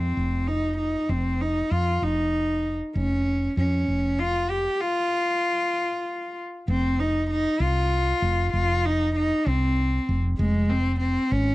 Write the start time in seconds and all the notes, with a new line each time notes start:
Already playing: F2 G#3 C4 F4
0.17 F1
0.47 D#4
0.78 D#4
1.09 F1 C4
1.41 D#4
1.71 F2 F4
2.02 F1 D#4
2.95 F1 C#4
3.57 F2 C#4
3.88 F1
4.19 F4
4.50 G4
4.80 F4
6.68 F1 C4
7.00 D#4
7.30 D#4
7.60 C2 F4
8.22 F1
8.53 F1 F4
8.85 D#4
9.16 D#4
9.46 C2 C4
10.09 F1
10.38 F1 G#3
10.70 C4
11.00 C4
11.32 G#1 C#4